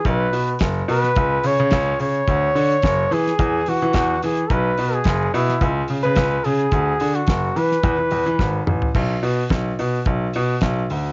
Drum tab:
CC |----------------|----------------|----------------|----------------|
HH |x-oxx-oxx-oxx-ox|x-oxx-oxx-oxx-ox|x-oxx-oxx-oxx-ox|x-oxx-oxx-ox----|
SD |----o--o----o---|----o--o----o---|----o--o----o---|----o--o----o---|
T2 |----------------|----------------|----------------|--------------o-|
FT |----------------|----------------|----------------|---------------o|
BD |o---o---o---o---|o---o---o---o---|o---o---o---o---|o---o---o---o---|

CC |x---------------|
HH |--o-x-o-x-o-x-o-|
SD |----o-------o---|
T2 |----------------|
FT |----------------|
BD |o---o---o---o---|